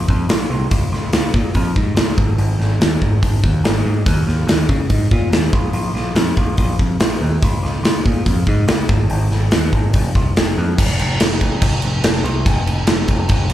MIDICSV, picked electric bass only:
0, 0, Header, 1, 2, 480
1, 0, Start_track
1, 0, Key_signature, -5, "minor"
1, 0, Tempo, 419580
1, 805, Time_signature, 4, 2, 24, 8
1, 15482, End_track
2, 0, Start_track
2, 0, Title_t, "Picked electric bass"
2, 0, Program_c, 0, 34
2, 97, Note_on_c, 0, 41, 90
2, 282, Note_off_c, 0, 41, 0
2, 328, Note_on_c, 0, 34, 85
2, 516, Note_off_c, 0, 34, 0
2, 564, Note_on_c, 0, 36, 83
2, 753, Note_off_c, 0, 36, 0
2, 822, Note_on_c, 0, 37, 91
2, 1004, Note_off_c, 0, 37, 0
2, 1054, Note_on_c, 0, 37, 91
2, 1239, Note_off_c, 0, 37, 0
2, 1292, Note_on_c, 0, 37, 88
2, 1478, Note_off_c, 0, 37, 0
2, 1537, Note_on_c, 0, 46, 87
2, 1721, Note_off_c, 0, 46, 0
2, 1775, Note_on_c, 0, 41, 100
2, 1960, Note_off_c, 0, 41, 0
2, 2022, Note_on_c, 0, 44, 79
2, 2204, Note_off_c, 0, 44, 0
2, 2231, Note_on_c, 0, 37, 92
2, 2425, Note_off_c, 0, 37, 0
2, 2490, Note_on_c, 0, 32, 74
2, 2677, Note_off_c, 0, 32, 0
2, 2725, Note_on_c, 0, 32, 87
2, 2913, Note_off_c, 0, 32, 0
2, 2960, Note_on_c, 0, 32, 88
2, 3150, Note_off_c, 0, 32, 0
2, 3193, Note_on_c, 0, 39, 76
2, 3386, Note_off_c, 0, 39, 0
2, 3457, Note_on_c, 0, 32, 90
2, 3640, Note_off_c, 0, 32, 0
2, 3698, Note_on_c, 0, 32, 84
2, 3881, Note_off_c, 0, 32, 0
2, 3939, Note_on_c, 0, 39, 79
2, 4122, Note_off_c, 0, 39, 0
2, 4159, Note_on_c, 0, 32, 100
2, 4349, Note_off_c, 0, 32, 0
2, 4410, Note_on_c, 0, 44, 84
2, 4596, Note_off_c, 0, 44, 0
2, 4647, Note_on_c, 0, 39, 99
2, 4834, Note_off_c, 0, 39, 0
2, 4881, Note_on_c, 0, 39, 81
2, 5070, Note_off_c, 0, 39, 0
2, 5113, Note_on_c, 0, 39, 85
2, 5305, Note_off_c, 0, 39, 0
2, 5369, Note_on_c, 0, 49, 93
2, 5555, Note_off_c, 0, 49, 0
2, 5605, Note_on_c, 0, 44, 88
2, 5793, Note_off_c, 0, 44, 0
2, 5852, Note_on_c, 0, 46, 91
2, 6037, Note_off_c, 0, 46, 0
2, 6065, Note_on_c, 0, 39, 87
2, 6261, Note_off_c, 0, 39, 0
2, 6325, Note_on_c, 0, 34, 87
2, 6513, Note_off_c, 0, 34, 0
2, 6558, Note_on_c, 0, 34, 95
2, 6749, Note_off_c, 0, 34, 0
2, 6796, Note_on_c, 0, 34, 89
2, 6988, Note_off_c, 0, 34, 0
2, 7038, Note_on_c, 0, 41, 87
2, 7229, Note_off_c, 0, 41, 0
2, 7289, Note_on_c, 0, 34, 83
2, 7476, Note_off_c, 0, 34, 0
2, 7528, Note_on_c, 0, 34, 102
2, 7715, Note_off_c, 0, 34, 0
2, 7775, Note_on_c, 0, 41, 84
2, 7960, Note_off_c, 0, 41, 0
2, 8007, Note_on_c, 0, 34, 89
2, 8194, Note_off_c, 0, 34, 0
2, 8244, Note_on_c, 0, 39, 83
2, 8433, Note_off_c, 0, 39, 0
2, 8496, Note_on_c, 0, 37, 100
2, 8680, Note_off_c, 0, 37, 0
2, 8726, Note_on_c, 0, 37, 86
2, 8914, Note_off_c, 0, 37, 0
2, 8959, Note_on_c, 0, 37, 88
2, 9150, Note_off_c, 0, 37, 0
2, 9219, Note_on_c, 0, 46, 88
2, 9402, Note_off_c, 0, 46, 0
2, 9457, Note_on_c, 0, 41, 90
2, 9641, Note_off_c, 0, 41, 0
2, 9693, Note_on_c, 0, 44, 95
2, 9879, Note_off_c, 0, 44, 0
2, 9924, Note_on_c, 0, 37, 103
2, 10114, Note_off_c, 0, 37, 0
2, 10174, Note_on_c, 0, 32, 88
2, 10360, Note_off_c, 0, 32, 0
2, 10411, Note_on_c, 0, 32, 107
2, 10598, Note_off_c, 0, 32, 0
2, 10657, Note_on_c, 0, 32, 81
2, 10842, Note_off_c, 0, 32, 0
2, 10899, Note_on_c, 0, 39, 86
2, 11083, Note_off_c, 0, 39, 0
2, 11138, Note_on_c, 0, 32, 85
2, 11323, Note_off_c, 0, 32, 0
2, 11371, Note_on_c, 0, 29, 103
2, 11558, Note_off_c, 0, 29, 0
2, 11617, Note_on_c, 0, 36, 84
2, 11802, Note_off_c, 0, 36, 0
2, 11867, Note_on_c, 0, 29, 93
2, 12048, Note_off_c, 0, 29, 0
2, 12101, Note_on_c, 0, 41, 94
2, 12285, Note_off_c, 0, 41, 0
2, 12343, Note_on_c, 0, 29, 89
2, 12549, Note_off_c, 0, 29, 0
2, 12567, Note_on_c, 0, 29, 92
2, 12780, Note_off_c, 0, 29, 0
2, 12823, Note_on_c, 0, 29, 80
2, 13030, Note_off_c, 0, 29, 0
2, 13056, Note_on_c, 0, 29, 91
2, 13266, Note_off_c, 0, 29, 0
2, 13291, Note_on_c, 0, 29, 96
2, 13503, Note_off_c, 0, 29, 0
2, 13537, Note_on_c, 0, 29, 81
2, 13746, Note_off_c, 0, 29, 0
2, 13772, Note_on_c, 0, 29, 96
2, 13984, Note_off_c, 0, 29, 0
2, 14003, Note_on_c, 0, 36, 90
2, 14219, Note_off_c, 0, 36, 0
2, 14257, Note_on_c, 0, 29, 108
2, 14679, Note_off_c, 0, 29, 0
2, 14727, Note_on_c, 0, 29, 93
2, 14941, Note_off_c, 0, 29, 0
2, 14979, Note_on_c, 0, 29, 99
2, 15188, Note_off_c, 0, 29, 0
2, 15219, Note_on_c, 0, 29, 92
2, 15428, Note_off_c, 0, 29, 0
2, 15482, End_track
0, 0, End_of_file